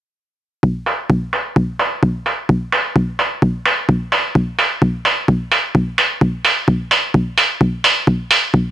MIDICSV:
0, 0, Header, 1, 2, 480
1, 0, Start_track
1, 0, Tempo, 465116
1, 652, Time_signature, 4, 2, 24, 8
1, 8992, End_track
2, 0, Start_track
2, 0, Title_t, "Drums"
2, 651, Note_on_c, 9, 36, 110
2, 755, Note_off_c, 9, 36, 0
2, 891, Note_on_c, 9, 46, 100
2, 994, Note_off_c, 9, 46, 0
2, 1131, Note_on_c, 9, 36, 113
2, 1235, Note_off_c, 9, 36, 0
2, 1371, Note_on_c, 9, 46, 86
2, 1474, Note_off_c, 9, 46, 0
2, 1612, Note_on_c, 9, 36, 117
2, 1715, Note_off_c, 9, 36, 0
2, 1852, Note_on_c, 9, 46, 102
2, 1955, Note_off_c, 9, 46, 0
2, 2092, Note_on_c, 9, 36, 109
2, 2195, Note_off_c, 9, 36, 0
2, 2332, Note_on_c, 9, 46, 92
2, 2435, Note_off_c, 9, 46, 0
2, 2571, Note_on_c, 9, 36, 116
2, 2675, Note_off_c, 9, 36, 0
2, 2811, Note_on_c, 9, 46, 106
2, 2914, Note_off_c, 9, 46, 0
2, 3052, Note_on_c, 9, 36, 115
2, 3155, Note_off_c, 9, 36, 0
2, 3292, Note_on_c, 9, 46, 94
2, 3395, Note_off_c, 9, 46, 0
2, 3532, Note_on_c, 9, 36, 118
2, 3635, Note_off_c, 9, 36, 0
2, 3772, Note_on_c, 9, 46, 106
2, 3875, Note_off_c, 9, 46, 0
2, 4012, Note_on_c, 9, 36, 110
2, 4115, Note_off_c, 9, 36, 0
2, 4252, Note_on_c, 9, 46, 90
2, 4355, Note_off_c, 9, 46, 0
2, 4492, Note_on_c, 9, 36, 117
2, 4595, Note_off_c, 9, 36, 0
2, 4732, Note_on_c, 9, 46, 111
2, 4836, Note_off_c, 9, 46, 0
2, 4972, Note_on_c, 9, 36, 121
2, 5075, Note_off_c, 9, 36, 0
2, 5212, Note_on_c, 9, 46, 94
2, 5315, Note_off_c, 9, 46, 0
2, 5452, Note_on_c, 9, 36, 125
2, 5555, Note_off_c, 9, 36, 0
2, 5692, Note_on_c, 9, 46, 107
2, 5795, Note_off_c, 9, 46, 0
2, 5932, Note_on_c, 9, 36, 112
2, 6035, Note_off_c, 9, 36, 0
2, 6172, Note_on_c, 9, 46, 90
2, 6275, Note_off_c, 9, 46, 0
2, 6412, Note_on_c, 9, 36, 115
2, 6515, Note_off_c, 9, 36, 0
2, 6652, Note_on_c, 9, 46, 104
2, 6755, Note_off_c, 9, 46, 0
2, 6892, Note_on_c, 9, 36, 117
2, 6995, Note_off_c, 9, 36, 0
2, 7132, Note_on_c, 9, 46, 94
2, 7235, Note_off_c, 9, 46, 0
2, 7372, Note_on_c, 9, 36, 120
2, 7475, Note_off_c, 9, 36, 0
2, 7612, Note_on_c, 9, 46, 107
2, 7715, Note_off_c, 9, 46, 0
2, 7851, Note_on_c, 9, 36, 117
2, 7955, Note_off_c, 9, 36, 0
2, 8092, Note_on_c, 9, 46, 97
2, 8196, Note_off_c, 9, 46, 0
2, 8331, Note_on_c, 9, 36, 114
2, 8435, Note_off_c, 9, 36, 0
2, 8572, Note_on_c, 9, 46, 102
2, 8675, Note_off_c, 9, 46, 0
2, 8811, Note_on_c, 9, 36, 118
2, 8915, Note_off_c, 9, 36, 0
2, 8992, End_track
0, 0, End_of_file